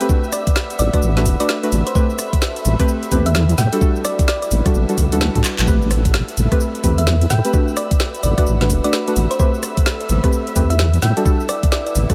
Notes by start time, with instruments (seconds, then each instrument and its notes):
Already playing: ambient pad A4 E5 B5, string machine E5 E6
0.01 synth stab A3 C4 G4 B4, closed hi-hat, shaker
0.09 synth stab F#4, ambient pad B4, kick, shaker
0.21 ambient pad F#5, shaker
0.32 synth pluck D5, cross-stick, open hi-hat, shaker
0.47 kick, closed hi-hat, shaker
0.56 snare, shaker
0.70 closed hi-hat, shaker
0.79 wobble bass A1, synth pluck D5, open hi-hat, shaker
0.93 synth stab A3 D4 F#4 B4, synth pluck D5, kick, cross-stick, closed hi-hat, shaker
1.02 wobble bass A1, shaker
1.17 synth stab A3 D4 F#4 B4, snare, closed hi-hat, shaker
1.25 wobble bass E1, kick, open hi-hat, shaker
1.40 synth stab A3 D4 F#4 B4, synth pluck D5, closed hi-hat, shaker
1.49 snare, shaker
1.63 synth stab A3 D4 F#4 B4, closed hi-hat, shaker
1.72 wobble bass A1, ambient pad A4, open hi-hat, shaker
1.87 synth pluck C5, closed hi-hat, shaker
1.95 synth stab A3 C4 G4 B4, synth pluck C5, kick, shaker
2.07 ambient pad E5, shaker
2.19 cross-stick, open hi-hat, shaker
2.33 kick, closed hi-hat, shaker
2.42 snare, shaker
2.56 closed hi-hat, shaker
2.65 wobble bass A1, open hi-hat, shaker
2.79 synth stab A3 C4 G4 B4, kick, cross-stick, closed hi-hat, shaker
2.88 shaker
3.03 closed hi-hat, shaker
3.11 wobble bass E2, synth stab A3 C4 G4 B4, kick, open hi-hat, shaker
3.26 synth pluck E5, closed hi-hat, shaker
3.35 snare, shaker
3.49 closed hi-hat, shaker
3.58 wobble bass A2, ambient pad E4, synth pluck G5, snare, open hi-hat, shaker
3.73 synth stab G3 D4 F#4 A4, closed hi-hat, shaker
3.81 synth stab G3 D4 F#4 A4, kick, shaker
3.96 ambient pad B4, shaker
4.05 synth pluck D5, cross-stick, open hi-hat, shaker
4.19 kick, closed hi-hat, shaker
4.28 synth pluck D5, snare, shaker
4.42 synth pluck D5, ambient pad F#5, closed hi-hat, shaker
4.51 wobble bass A1, open hi-hat, shaker
4.66 synth stab G3 D4 F#4 A4, kick, cross-stick, closed hi-hat, shaker
4.74 wobble bass A1, shaker
4.89 synth stab G3 D4 F#4 A4, closed hi-hat, shaker
4.98 wobble bass D2, kick, open hi-hat, shaker
5.12 synth stab G3 D4 F#4 A4, closed hi-hat, shaker
5.21 snare, shaker
5.35 wobble bass A2, synth stab G3 D4 F#4 A4, kick, closed hi-hat, shaker
5.44 clap, open hi-hat, shaker
5.59 wobble bass A1, clap, closed hi-hat, shaker
5.67 synth stab A3 C4 G4 B4, ambient pad A4, string machine E5 E6, kick, shaker
5.82 shaker
5.91 ambient pad E5, cross-stick, open hi-hat, shaker
6.05 kick, closed hi-hat, shaker
6.14 ambient pad B5, snare, shaker
6.28 closed hi-hat, shaker
6.37 wobble bass A1, open hi-hat, shaker
6.52 synth stab A3 C4 G4 B4, kick, cross-stick, closed hi-hat, shaker
6.60 shaker
6.75 closed hi-hat, shaker
6.84 wobble bass E2, synth stab A3 C4 G4 B4, kick, open hi-hat, shaker
6.98 synth pluck E5, closed hi-hat, shaker
7.07 snare, shaker
7.21 closed hi-hat, shaker
7.30 wobble bass A2, synth pluck G5, snare, open hi-hat, shaker
7.45 synth stab A3 C4 G4 B4, closed hi-hat, shaker
7.53 synth stab A3 D4 F#4 B4, ambient pad B4, kick, shaker
7.68 shaker
7.77 synth pluck D5, cross-stick, open hi-hat, shaker
7.91 ambient pad F#5, kick, closed hi-hat, shaker
8.00 snare, shaker
8.14 closed hi-hat, shaker
8.23 wobble bass A1, synth pluck D5, open hi-hat, shaker
8.38 synth stab A3 D4 F#4 B4, synth pluck D5, kick, cross-stick, closed hi-hat, shaker
8.46 wobble bass A1, shaker
8.61 synth stab A3 D4 F#4 B4, snare, closed hi-hat, shaker
8.70 wobble bass E1, kick, open hi-hat, shaker
8.84 synth stab A3 D4 F#4 B4, synth pluck D5, closed hi-hat, shaker
8.93 snare, shaker
9.08 synth stab A3 D4 F#4 B4, closed hi-hat, shaker
9.16 wobble bass A1, ambient pad A4, open hi-hat, shaker
9.31 synth pluck C5, closed hi-hat, shaker
9.39 synth stab A3 C4 G4 B4, synth pluck C5, kick, shaker
9.54 shaker
9.59 ambient pad E5, cross-stick, open hi-hat, shaker
9.77 kick, closed hi-hat, shaker
9.86 snare, shaker
10.01 closed hi-hat, shaker
10.09 wobble bass A1, open hi-hat, shaker
10.24 synth stab A3 C4 G4 B4, kick, cross-stick, closed hi-hat, shaker
10.33 shaker
10.47 closed hi-hat, shaker
10.56 wobble bass E2, synth stab A3 C4 G4 B4, kick, open hi-hat, shaker
10.70 synth pluck E5, closed hi-hat, shaker
10.79 snare, shaker
10.94 closed hi-hat, shaker
11.02 wobble bass A2, ambient pad E4, synth pluck G5, snare, open hi-hat, shaker
11.14 synth stab G3 D4 F#4 A4, ambient pad B4, closed hi-hat, shaker
11.25 synth stab G3 D4 F#4 A4, ambient pad F#5, kick, shaker
11.40 shaker
11.49 synth pluck D5, cross-stick, open hi-hat, shaker
11.63 kick, closed hi-hat, shaker
11.72 synth pluck D5, snare, shaker
11.86 synth pluck D5, closed hi-hat, shaker
11.95 wobble bass A1, open hi-hat, shaker
12.10 synth stab G3 D4 F#4 A4, kick, cross-stick, closed hi-hat, shaker